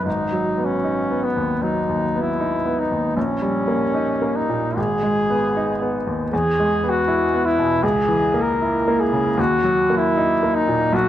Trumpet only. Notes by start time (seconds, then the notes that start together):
0.05 D#4
0.65 C#4
1.24 B3
1.62 D#4
2.21 E4
2.79 D#4
3.17 C#4
4.36 D#4
4.78 G#4
6.33 G#4
6.89 F#4
7.45 E4
7.83 G#4
8.41 A#4
9.00 G#4
9.40 F#4
9.97 E4
10.55 D#4
10.94 F#4